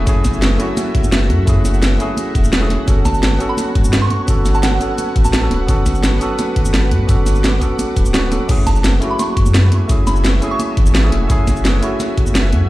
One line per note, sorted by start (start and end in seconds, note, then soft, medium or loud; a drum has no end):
0.00 0.05 A3 medium
0.00 2.84 A3 medium
0.00 0.06 C#4 medium
0.00 0.08 E4 medium
0.00 8.45 F#4 medium
0.00 0.09 G#4 loud
0.00 2.84 E5 medium
0.05 0.58 F#1 loud
0.05 0.57 A3 loud
0.05 0.57 C#4 medium
0.05 0.58 E4 medium
0.05 0.58 G#4 loud
0.05 8.45 F#5 medium
0.05 kick loud
0.05 closed hi-hat medium
0.05 shaker soft
0.24 kick medium
0.24 snare soft
0.24 closed hi-hat medium
0.24 high conga loud
0.24 shaker medium
0.34 shaker soft
0.42 snare loud
0.42 closed hi-hat medium
0.42 shaker soft
0.50 high conga medium
0.58 1.44 A3 loud
0.58 1.45 C#4 medium
0.58 1.46 E4 medium
0.58 1.46 F#4 loud
0.58 closed hi-hat medium
0.58 shaker soft
0.77 snare soft
0.77 closed hi-hat medium
0.77 high conga loud
0.77 shaker soft
0.95 1.31 F#1 medium
0.95 kick loud
0.95 closed hi-hat medium
1.04 high conga medium
1.04 shaker medium
1.12 snare loud
1.12 closed hi-hat medium
1.12 shaker soft
1.30 1.46 F#2 medium
1.30 closed hi-hat medium
1.30 high conga medium
1.46 1.99 F#1 loud
1.46 1.97 A3 medium
1.46 1.98 C#4 medium
1.46 1.98 E4 medium
1.46 1.99 G#4 loud
1.46 kick loud
1.46 closed hi-hat medium
1.46 shaker soft
1.64 snare soft
1.64 closed hi-hat medium
1.64 high conga loud
1.64 shaker medium
1.74 shaker soft
1.83 snare loud
1.83 closed hi-hat medium
1.83 shaker soft
1.91 high conga medium
1.98 2.59 A3 medium
1.98 2.60 C#4 medium
1.98 2.60 E4 medium
1.98 2.61 G#4 loud
1.98 closed hi-hat medium
1.98 shaker soft
2.17 closed hi-hat medium
2.17 high conga loud
2.17 shaker soft
2.35 2.78 E1 loud
2.35 kick loud
2.35 closed hi-hat medium
2.35 shaker soft
2.44 high conga medium
2.44 shaker medium
2.53 snare loud
2.53 closed hi-hat medium
2.53 shaker soft
2.61 2.85 A3 medium
2.61 2.85 C#4 medium
2.61 2.86 E4 medium
2.61 2.86 G#4 loud
2.70 snare soft
2.70 closed hi-hat medium
2.70 high conga medium
2.86 3.39 G1 loud
2.86 3.37 B3 loud
2.86 3.38 C#4 medium
2.86 3.38 F#4 medium
2.86 3.39 A4 loud
2.86 8.45 B4 medium
2.86 5.66 C#5 medium
2.86 kick loud
2.86 closed hi-hat medium
2.86 shaker soft
3.05 3.32 A5 medium
3.05 kick medium
3.05 snare soft
3.05 closed hi-hat medium
3.05 high conga loud
3.05 shaker medium
3.14 shaker soft
3.23 snare loud
3.23 closed hi-hat medium
3.23 shaker soft
3.32 high conga medium
3.38 4.25 B3 loud
3.38 4.26 C#4 medium
3.38 4.26 F#4 medium
3.38 4.27 A4 loud
3.38 closed hi-hat medium
3.38 shaker soft
3.49 3.56 B5 medium
3.57 snare soft
3.57 closed hi-hat medium
3.57 high conga medium
3.57 shaker soft
3.75 4.09 G2 loud
3.75 kick loud
3.75 closed hi-hat medium
3.84 high conga medium
3.84 shaker medium
3.93 snare loud
3.93 closed hi-hat medium
3.93 shaker soft
4.02 4.23 C#6 medium
4.10 closed hi-hat medium
4.10 high conga medium
4.26 4.79 G1 loud
4.26 4.78 B3 medium
4.26 4.78 C#4 medium
4.26 4.79 F#4 medium
4.26 4.79 A4 loud
4.26 kick loud
4.26 closed hi-hat medium
4.26 shaker soft
4.45 snare soft
4.45 closed hi-hat medium
4.45 high conga medium
4.45 shaker medium
4.55 4.61 A5 medium
4.55 shaker soft
4.63 4.90 F#5 medium
4.63 snare loud
4.63 closed hi-hat medium
4.63 shaker medium
4.72 high conga medium
4.79 5.40 B3 medium
4.79 5.40 C#4 medium
4.79 5.41 F#4 medium
4.79 5.41 A4 loud
4.79 closed hi-hat medium
4.79 shaker soft
4.98 closed hi-hat medium
4.98 high conga medium
4.98 shaker medium
5.16 5.50 A1 loud
5.16 kick loud
5.16 closed hi-hat medium
5.25 5.60 A5 medium
5.25 high conga medium
5.25 shaker medium
5.33 snare loud
5.33 closed hi-hat medium
5.33 shaker medium
5.41 5.66 B3 medium
5.41 5.66 C#4 medium
5.41 5.66 F#4 medium
5.41 5.67 A4 loud
5.51 5.67 D1 medium
5.51 snare soft
5.51 closed hi-hat medium
5.51 high conga medium
5.67 6.20 G1 loud
5.67 6.18 B3 loud
5.67 6.19 C#4 medium
5.67 6.19 F#4 medium
5.67 6.20 A4 loud
5.67 8.46 D6 medium
5.67 kick loud
5.67 closed hi-hat medium
5.67 shaker medium
5.86 kick medium
5.86 snare soft
5.86 closed hi-hat medium
5.86 high conga medium
5.86 shaker medium
5.95 shaker soft
6.04 snare loud
6.04 closed hi-hat loud
6.04 shaker medium
6.13 high conga medium
6.19 7.06 B3 loud
6.19 7.06 C#4 medium
6.19 7.07 F#4 medium
6.19 7.08 A4 loud
6.19 closed hi-hat medium
6.19 shaker soft
6.39 snare soft
6.39 closed hi-hat loud
6.39 high conga medium
6.39 shaker medium
6.56 6.93 G1 medium
6.56 kick loud
6.56 closed hi-hat medium
6.65 high conga medium
6.65 shaker medium
6.74 snare loud
6.74 closed hi-hat loud
6.74 shaker medium
6.91 7.07 G2 medium
6.91 closed hi-hat medium
6.91 high conga medium
7.07 7.60 G1 loud
7.07 7.58 B3 medium
7.07 7.59 C#4 medium
7.07 7.60 F#4 medium
7.07 7.60 A4 loud
7.07 kick loud
7.07 closed hi-hat loud
7.07 shaker soft
7.26 snare soft
7.26 closed hi-hat medium
7.26 high conga medium
7.26 shaker medium
7.35 shaker soft
7.44 snare loud
7.44 closed hi-hat loud
7.44 shaker medium
7.52 high conga medium
7.60 8.11 B3 medium
7.60 8.12 C#4 medium
7.60 8.13 F#4 medium
7.60 8.13 A4 loud
7.60 kick medium
7.60 closed hi-hat medium
7.60 shaker soft
7.79 closed hi-hat loud
7.79 high conga medium
7.79 shaker medium
7.96 8.39 D1 loud
7.96 kick loud
7.96 closed hi-hat medium
7.96 shaker soft
8.05 high conga medium
8.05 shaker medium
8.13 8.29 B3 medium
8.13 8.29 C#4 medium
8.13 8.30 F#4 medium
8.13 8.30 B4 loud
8.13 snare loud
8.13 closed hi-hat loud
8.13 shaker medium
8.31 8.47 B3 medium
8.31 8.47 C#4 medium
8.31 8.47 F#4 medium
8.31 8.47 A4 medium
8.31 snare soft
8.31 closed hi-hat medium
8.31 high conga medium
8.31 shaker soft
8.48 9.00 F#1 loud
8.48 8.99 A3 loud
8.48 12.69 A3 medium
8.48 8.99 C#4 medium
8.48 9.00 E4 medium
8.48 12.69 F#4 medium
8.48 9.01 G#4 loud
8.48 12.69 E5 medium
8.48 12.69 G#5 medium
8.48 kick loud
8.48 closed hi-hat medium
8.48 crash medium
8.48 shaker soft
8.66 8.93 A5 medium
8.66 kick medium
8.66 snare soft
8.66 closed hi-hat medium
8.66 high conga loud
8.66 shaker medium
8.76 shaker soft
8.84 snare loud
8.84 closed hi-hat loud
8.84 shaker soft
8.94 high conga medium
9.00 9.87 A3 loud
9.00 9.87 C#4 medium
9.00 9.88 E4 medium
9.00 9.88 F#4 loud
9.00 closed hi-hat medium
9.00 shaker soft
9.11 9.17 B5 medium
9.19 9.46 C#6 medium
9.19 snare soft
9.19 closed hi-hat loud
9.19 high conga loud
9.19 shaker soft
9.37 9.71 F#2 loud
9.37 kick loud
9.37 closed hi-hat medium
9.46 high conga medium
9.46 shaker medium
9.54 snare loud
9.54 closed hi-hat medium
9.54 shaker soft
9.72 closed hi-hat medium
9.72 high conga medium
9.88 10.41 F#1 loud
9.88 10.39 A3 medium
9.88 10.40 C#4 medium
9.88 10.40 E4 medium
9.88 10.41 G#4 loud
9.88 kick loud
9.88 closed hi-hat medium
9.88 shaker soft
10.07 10.28 B5 medium
10.07 snare soft
10.07 closed hi-hat medium
10.07 high conga loud
10.07 shaker medium
10.16 shaker soft
10.25 snare loud
10.25 closed hi-hat medium
10.25 shaker soft
10.34 high conga medium
10.40 11.01 A3 medium
10.40 11.02 C#4 medium
10.40 11.02 E4 medium
10.40 11.03 G#4 loud
10.40 closed hi-hat medium
10.40 shaker soft
10.51 10.57 C#6 medium
10.59 10.65 C#6 medium
10.59 closed hi-hat loud
10.59 high conga loud
10.59 shaker soft
10.77 11.11 G#1 loud
10.77 kick loud
10.77 closed hi-hat medium
10.86 high conga medium
10.86 shaker medium
10.95 snare loud
10.95 closed hi-hat medium
10.95 shaker soft
11.03 11.27 A3 medium
11.03 11.28 C#4 medium
11.03 11.28 E4 medium
11.03 11.28 G#4 loud
11.12 11.28 E1 medium
11.12 snare soft
11.12 closed hi-hat medium
11.12 high conga medium
11.28 11.81 F#1 loud
11.28 11.80 A3 loud
11.28 11.80 C#4 medium
11.28 11.81 E4 medium
11.28 11.81 G#4 loud
11.28 kick loud
11.28 closed hi-hat medium
11.28 shaker soft
11.47 kick medium
11.47 snare soft
11.47 closed hi-hat medium
11.47 high conga medium
11.47 shaker medium
11.56 shaker soft
11.65 snare loud
11.65 closed hi-hat medium
11.65 shaker soft
11.74 high conga medium
11.81 12.67 A3 loud
11.81 12.68 C#4 medium
11.81 12.68 E4 medium
11.81 12.69 F#4 loud
11.81 closed hi-hat medium
11.81 shaker soft
12.00 snare soft
12.00 closed hi-hat medium
12.00 high conga loud
12.00 shaker soft
12.17 12.54 F#1 medium
12.17 kick loud
12.17 closed hi-hat medium
12.26 high conga medium
12.26 shaker medium
12.35 snare loud
12.35 closed hi-hat medium
12.35 shaker soft
12.53 12.68 F#2 loud
12.53 closed hi-hat medium
12.53 high conga loud